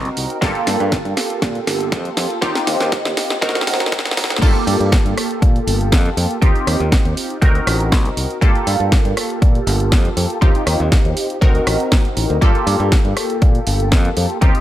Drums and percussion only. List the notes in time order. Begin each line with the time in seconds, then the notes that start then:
0.05 closed hi-hat
0.17 open hi-hat
0.30 closed hi-hat
0.42 kick, snare, closed hi-hat
0.55 closed hi-hat
0.67 snare, open hi-hat
0.80 closed hi-hat
0.92 kick, snare, closed hi-hat
1.05 closed hi-hat
1.17 snare, open hi-hat
1.30 closed hi-hat
1.42 kick, snare, closed hi-hat
1.55 closed hi-hat
1.67 snare, open hi-hat
1.80 closed hi-hat
1.92 kick, snare, closed hi-hat
2.05 closed hi-hat
2.17 snare, open hi-hat
2.30 closed hi-hat
2.42 kick, snare, closed hi-hat
2.55 snare, closed hi-hat
2.67 snare, open hi-hat
2.80 snare, closed hi-hat
2.92 kick, snare, closed hi-hat
3.05 snare, closed hi-hat
3.17 snare, open hi-hat
3.30 snare, closed hi-hat
3.42 kick, snare, closed hi-hat
3.49 snare
3.55 snare, closed hi-hat
3.61 snare
3.67 snare, open hi-hat
3.74 snare
3.80 snare, closed hi-hat
3.86 snare
3.92 kick, snare, closed hi-hat
3.99 snare
4.06 snare, closed hi-hat
4.11 snare
4.17 snare, open hi-hat
4.24 snare
4.30 snare, closed hi-hat
4.36 snare
4.42 kick, closed hi-hat, crash
4.55 closed hi-hat
4.67 open hi-hat
4.81 closed hi-hat
4.92 kick, snare, closed hi-hat
5.06 closed hi-hat
5.18 cross-stick, open hi-hat
5.31 closed hi-hat
5.42 kick, closed hi-hat
5.56 closed hi-hat
5.68 open hi-hat
5.81 closed hi-hat
5.92 kick, snare, closed hi-hat
6.06 closed hi-hat
6.17 open hi-hat
6.31 closed hi-hat
6.42 kick, closed hi-hat
6.56 closed hi-hat
6.67 cross-stick, open hi-hat
6.92 kick, snare, closed hi-hat
7.05 closed hi-hat
7.17 open hi-hat
7.30 closed hi-hat
7.42 kick, closed hi-hat
7.55 closed hi-hat
7.67 cross-stick, open hi-hat
7.80 closed hi-hat
7.92 kick, snare, closed hi-hat
8.05 closed hi-hat
8.17 open hi-hat
8.30 closed hi-hat
8.42 kick, closed hi-hat
8.55 closed hi-hat
8.67 open hi-hat
8.92 kick, snare, closed hi-hat
9.05 closed hi-hat
9.17 cross-stick, open hi-hat
9.30 closed hi-hat
9.42 kick, closed hi-hat
9.55 closed hi-hat
9.67 open hi-hat
9.80 closed hi-hat
9.92 kick, snare, closed hi-hat
10.05 closed hi-hat
10.17 open hi-hat
10.30 closed hi-hat
10.42 kick, closed hi-hat
10.55 closed hi-hat
10.67 cross-stick, open hi-hat
10.92 kick, snare, closed hi-hat
11.05 closed hi-hat
11.17 open hi-hat
11.30 closed hi-hat
11.42 kick, closed hi-hat
11.55 closed hi-hat
11.67 cross-stick, open hi-hat
11.80 closed hi-hat
11.92 kick, snare, closed hi-hat
12.05 closed hi-hat
12.17 open hi-hat
12.30 closed hi-hat
12.42 kick, closed hi-hat
12.55 closed hi-hat
12.67 open hi-hat
12.80 closed hi-hat
12.92 kick, snare, closed hi-hat
13.05 closed hi-hat
13.17 cross-stick, open hi-hat
13.30 closed hi-hat
13.42 kick, closed hi-hat
13.55 closed hi-hat
13.67 open hi-hat
13.80 closed hi-hat
13.92 kick, snare, closed hi-hat
14.05 closed hi-hat
14.17 open hi-hat
14.30 closed hi-hat
14.42 kick, closed hi-hat
14.55 closed hi-hat